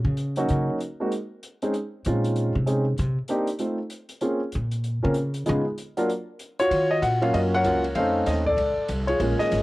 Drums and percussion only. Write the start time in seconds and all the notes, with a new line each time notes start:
0.17 closed hi-hat
0.36 closed hi-hat
0.49 closed hi-hat
0.80 closed hi-hat
1.12 closed hi-hat
1.43 closed hi-hat
1.62 closed hi-hat
1.74 closed hi-hat
2.05 closed hi-hat
2.24 closed hi-hat
2.36 closed hi-hat
2.67 closed hi-hat
2.98 closed hi-hat
3.28 closed hi-hat
3.47 closed hi-hat
3.59 closed hi-hat
3.90 closed hi-hat
4.09 closed hi-hat
4.21 closed hi-hat
4.52 closed hi-hat
4.71 closed hi-hat
4.84 closed hi-hat
5.14 closed hi-hat
5.34 closed hi-hat
5.46 closed hi-hat
5.78 closed hi-hat
5.97 closed hi-hat
6.10 closed hi-hat
6.39 closed hi-hat
6.59 closed hi-hat
6.71 ride
7.03 hi-hat pedal, ride
7.22 ride
7.34 ride
7.64 hi-hat pedal, ride
7.84 ride
7.95 ride
8.26 snare, hi-hat pedal, ride
8.46 kick
8.58 ride
8.88 hi-hat pedal, ride
9.08 ride
9.20 ride
9.39 snare
9.52 snare, hi-hat pedal, ride